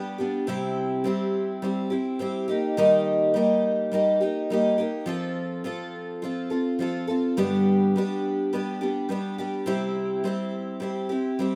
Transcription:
twelve-string acoustic guitar
Already playing: G3 B3 D4 G4
0.18 G3 B3 D4 G4
0.47 C3 G3 C4 E4 G4
1.04 G3 C4 E4 G4
1.62 G3 C4 E4 G4
1.90 C4 E4 G4
2.19 G3 C4 E4 G4
2.48 A#3 D#4 G4
2.77 D#3 G3 A#3 D#4 G4
3.34 G3 A#3 D#4 G4
3.91 G3 A#3 D#4 G4
4.21 A#3 D#4 G4
4.50 G3 A#3 D#4 G4
4.78 A#3 D#4 G4
5.06 F3 C4 F4 A4
5.64 F3 C4 F4 A4
6.22 F3 C4 F4 A4
6.50 C4 F4 A4
6.79 F3 C4 F4 A4
7.08 C4 F4 A4
7.37 G2 D3 G3 B3 D4 G4
7.96 G3 B3 D4 G4
8.53 G3 B3 D4 G4
8.81 G3 B3 D4 G4
9.09 G3 B3 D4 G4
9.38 G3 B3 D4 G4
9.66 C3 G3 C4 E4 G4
10.24 G3 C4 E4 G4
10.80 G3 C4 E4 G4
11.09 C4 E4 G4
11.39 G3 C4 E4 G4

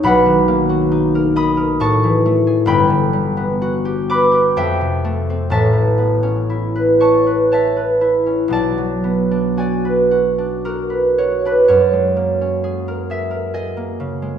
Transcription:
harp
Already playing: D#4 D#5
0.03 B1 B2 F#5 B5
0.26 D#3
0.48 A#3
0.69 F#4
0.92 D#4
1.15 A#4
1.36 D#5 B5 D#6
1.57 A#4
1.80 A2 A5 C#6
2.04 E3
2.26 A3
2.47 G#4
2.66 G1 G2 G5 B5
2.90 D3
3.13 G3
3.37 B3
3.62 F#4
3.85 G4
4.10 B4 B5 D6
4.32 G4
4.57 F2 E5 G5
4.81 C3
5.05 A3
5.30 C4
5.50 A1 A2 E5 A5
5.73 E3
5.98 B3
6.23 C#4
6.50 E4
6.76 B4
7.00 C#5 A5 C#6
7.27 B4
7.52 C#5 E5 A5
7.77 B4
8.01 E4
8.26 C#4
8.48 B1 B2
8.53 D5 A5
8.78 F#3
9.04 B3
9.31 D4
9.57 F#4 D5 G#5
9.85 B4
10.11 F#4
10.38 D4
10.65 F#4 A#4
10.90 B4
11.18 F#4 C#5
11.45 D4 B4
11.68 F#2 C#5
11.93 G#3
12.17 A#3
12.41 C#4
12.64 G#4
12.88 A#4
13.10 G#4 E5
13.31 A#4
13.54 G#4 D#5
13.77 A#3
14.00 C#3
14.22 G#3

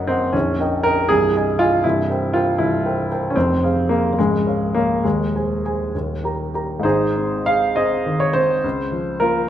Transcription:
grand piano
Already playing: F#1 F#2 A#4 D#5 F#5
0.07 C4 A#4 D#5 F#5
0.33 A#0 A#1 C#4
0.60 A#4 D#5 G5
0.83 A#4 D#5 G5
1.09 C1 C2 G#4
1.36 G#4 D#5 G#5
1.59 F4 G#4 D#5 G#5
1.84 C1 C2 E4
2.10 A#4 C5 G5
2.33 F4 A#4 C5 G5
2.58 C1 C2 E4
2.85 A#4 C5 G5
3.11 A#4 C5 G5
3.30 C#4
3.36 F1 F2 C4
3.63 G#4 C5 F5
3.89 A#3 G#4 C5 F5
4.13 A#3
4.19 C#1 C#2 G#3
4.46 A#4 C#5 F5
4.74 A#3 A#4 C#5 F5
5.04 D#1 D#2 G#3
5.36 G#4 C5 G#5
5.65 G#4 C5 G#5
5.95 D#1 D#2
6.24 G4 A#4 A#5
6.54 G4 A#4 A#5
6.80 G#2 C5
6.84 G#1 D#4 G#4
7.16 C4
7.46 G#4 F5
7.76 C4 G#4 C5 D#5
8.06 D#3
8.20 C#5
8.33 C4 C5
8.64 C#2
8.92 F3
9.20 A#3 F4 A#4

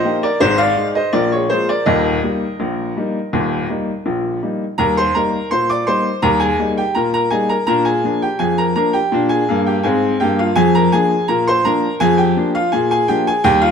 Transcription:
upright piano
Already playing: C5 D#5
0.05 A#3 D#4 G4
0.23 A#4 D5
0.40 G#1 G#2 G#4 C5
0.58 D5 F5
0.77 G#3 D#4 G#4
0.95 C5 D#5
1.13 A#1 A#2 A#4 D5
1.32 G#4 C#5
1.50 G#3 A#3 F4 G#4 C5
1.69 A#4 D5
1.86 D#1 D#2 A#4 D#5
2.23 G3 A#3 D#4
2.60 A#1 A#2
2.97 G3 A#3 D#4
3.33 D#1 D#2
3.69 G3 A#3 D#4
4.05 A#1 A#2
4.42 G3 A#3 D#4
4.78 D#2 G3 A#4 A#5
4.97 C5 C6
5.15 G3 A#3 D#4 A#4 A#5
5.51 A#2 C5 C6
5.70 D5 D6
5.87 G3 A#3 D#4 C5 C6
6.22 D#2 G3 A#4 A#5
6.40 G#4 G#5
6.59 G3 A#3 D#4
6.77 G4 G5
6.95 A#2 A#4 A#5
7.14 A#4 A#5
7.31 G3 A#3 D#4 G#4 G#5
7.49 A#4 A#5
7.67 A#2 D4 A#4 A#5
7.85 G#4 G#5
8.04 F3 A#3 D4
8.22 G4 G5
8.39 F2 G#4 G#5
8.58 A#4 A#5
8.76 F3 A#3 D4 A#4 A#5
8.93 G4 G5
9.12 A#2 D4
9.29 G#4 G#5
9.48 G2 A#3
9.67 G4 G5
9.83 G#2 C4 G#4 F5 G#5
10.20 G2 A#3 G4 G5
10.39 F4 F5
10.56 F2 G#4 G#5
10.75 A#4 A#5
10.92 F3 A#3 D4 G#4 G#5
11.28 A#2 A#4 A#5
11.47 C5 C6
11.65 F3 A#3 D4 A#4 A#5
12.00 F2 G#4 G#5
12.18 G4 G5
12.37 F3 A#3 D4
12.55 F4 F5
12.72 A#2 G#4 G#5
12.91 G#4 G#5
13.08 F3 A#3 D4 G4 G5
13.27 G#4 G#5
13.44 D#2 G3 G4 G5
13.62 F4 F5

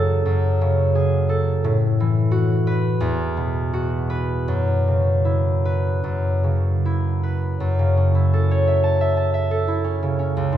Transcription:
harp
Already playing: F#2 C#3 G#4 A4
0.26 F#2
0.61 C#3
0.95 G#4
1.29 A4
1.64 A2
2.00 E3
2.31 F#4
2.67 B4
3.00 E2
3.37 B2
3.73 F#4
4.10 B4
4.48 F#2
4.88 C#3
5.25 E4
5.65 B4
6.04 F#2
6.44 C#3
6.85 E4
7.23 B4
7.60 F#2
7.79 C#3
7.97 C#4
8.15 E4
8.33 A4
8.51 C#5
8.67 E5
8.83 A5
9.01 E5
9.17 A5
9.34 E5
9.51 A4
9.68 E4
9.84 C#4
10.03 C#3
10.19 C#4
10.37 C#2
10.52 G#2

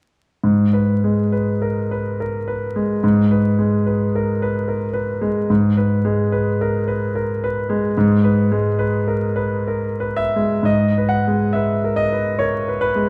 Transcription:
grand piano
0.44 G#2
0.73 B4
1.04 G#3
1.32 B4
1.62 A#4
1.91 B4
2.20 A#4
2.48 B4
2.76 G#3
3.04 G#2
3.31 B4
3.59 G#3
3.86 B4
4.15 A#4
4.42 B4
4.68 A#4
4.93 B4
5.21 G#3
5.50 G#2
5.77 B4
6.05 G#3
6.32 B4
6.61 A#4
6.88 B4
7.15 A#4
7.44 B4
7.69 G#3
7.97 G#2
8.24 B4
8.52 G#3
8.79 B4
9.08 A#4
9.36 B4
9.67 A#4
10.00 B4
10.16 E5
10.36 G#3
10.63 G#2 D#5
10.98 B4
11.09 F#5
11.27 G#3
11.53 B4 E5
11.84 A#4
11.96 D#5
12.13 B4
12.39 A#4 C#5
12.68 B4
12.81 B4
12.96 G#3

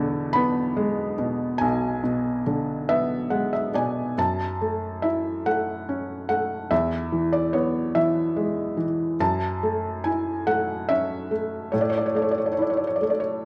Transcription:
felt piano
Already playing: E2 B2 D3 E5
0.33 B3 B5
0.77 G#3
1.19 B2
1.58 B1 G#5
2.04 B2
2.47 D3
2.89 B3 E5
3.30 G#3 F#5
3.53 E5
3.74 B2 D5 G#5
4.18 F#2 A5
4.62 A3
5.02 E4 E5
5.46 A3 F#5
5.89 C#4
6.29 A3 F#5
6.71 E2 E5
7.12 E3
7.33 D5
7.53 B3 C#5
7.95 E3 E5
8.36 G#3
8.77 E3
9.20 F#2 A5
9.63 A3
10.04 E4 G#5
10.47 A3 F#5
10.89 C#4 E5
11.31 A3
11.72 A2 C#5
11.81 D5
11.90 C#5
11.98 D5
12.06 C#5
12.15 A3 D5
12.22 C#5
12.31 D5
12.38 C#5
12.46 D5
12.53 C#5
12.58 E4 D5
12.70 C#5
12.77 D5
12.87 C#5
12.96 D5
13.01 A3 C#5
13.10 D5
13.20 C#5

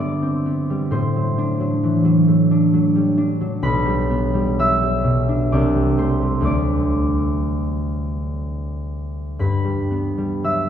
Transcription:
harp
Already playing: G2 D3 G3 B3 D4 B4 E5 B5 E6
0.00 D5 D6
0.22 C4
0.46 B3
0.70 G3
0.91 A2 C5 C6
1.16 F#3
1.38 D4
1.60 F#3
1.83 E3
2.05 F#3
2.28 A3
2.51 D4
2.74 F#3
2.95 G3
3.18 D4
3.41 F#3
3.62 B1 B4 B5
3.85 G3
4.10 B3
4.34 G3
4.59 F#3 E5 E6
4.81 G3
5.04 B2
5.29 D4
5.52 C2 D5 D6
5.75 G3
5.98 A3 C5 C6
6.22 G3
6.41 D2 F#3 A3 D4
6.45 D5 D6
9.39 G2 B4 B5
9.64 G3
9.91 B3
10.18 G3
10.44 F#3 E5 E6

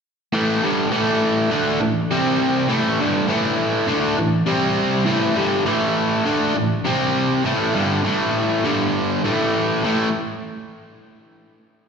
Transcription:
overdriven electric guitar
0.33 A2 E3 A3
0.62 G2 D3 G3
0.90 A2 E3 A3
1.51 D3 A3 D4
1.81 A2 E3
2.11 C3 G3 C4
2.69 A2 E3 A3
2.99 G2 D3 G3
3.28 A2 E3 A3
3.87 D3 A3 D4
4.17 A2 E3
4.46 C3 G3 C4
5.05 A2 E3 A3
5.35 G2 D3 G3
5.66 A2 E3 A3
6.25 D3 A3 D4
6.55 A2 E3
6.85 C3 G3 C4
7.44 A2 E3 A3
7.74 G2 D3 G3
8.04 A2 E3 A3
8.64 G2 D3 G3
9.24 A2 E3 A3
9.84 A2 E3 A3

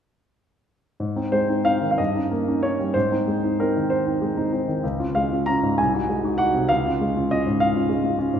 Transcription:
grand piano
1.00 G#2
1.16 C4 D#4
1.32 G#3 C5
1.49 C4 D#4
1.65 C4 D#4 F5
1.82 D#3
1.91 F5
1.98 G2 D#5
2.16 C#4 D#4
2.31 A#3
2.48 C#4 D#4
2.63 C#4 D#4 C#5
2.80 G3
2.94 G#2 C5
3.12 C4 D#4
3.27 G#3
3.44 C4 D#4
3.60 C4 D#4 A#4
3.76 D#3
3.90 C5
4.07 C4 D#4
4.22 G#3
4.37 C4 D#4
4.52 C4 D#4
4.68 D#3
4.83 C#2
4.99 C#4 F4
5.15 G#3 F5
5.31 C#4 F4
5.46 C#4 F4 A#5
5.63 G#2
5.78 C2 G#5
5.94 D#4 F#4
6.09 G#3
6.24 D#4 F#4
6.38 D#4 F#4 F#5
6.54 C3
6.69 C#2 F5
6.85 C#4 F4
7.01 G#3
7.16 C#4 F4
7.31 C#4 F4 D#5
7.46 G#2
7.60 F5
7.76 C#4 F4
7.89 G#3
8.04 C#4 F4
8.19 C#4 F4
8.34 G#2

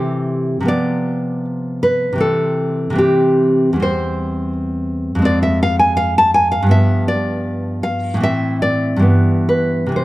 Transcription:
nylon-string guitar
Already playing: C3 E3 C4 G4
0.60 C3 F3
0.65 B3 D5
1.83 B4
2.13 C3 E3
2.18 C4 A4
2.90 C3 E3
2.95 C4 G4
3.73 E2 G3
3.80 C4 C5
5.15 F2 G#3
5.22 C4 D5
5.43 E5
5.63 F5
5.79 G#5
5.97 F5
6.18 A5
6.34 G#5
6.52 F5
6.62 G2
6.67 F3 B3
6.71 E5
7.08 D5
7.83 F5
8.14 A2 E3
8.20 C4 E5
8.62 D5
8.96 G2 E3
9.02 B3
9.49 B4
9.86 C3 E3
9.92 C4
9.96 C5

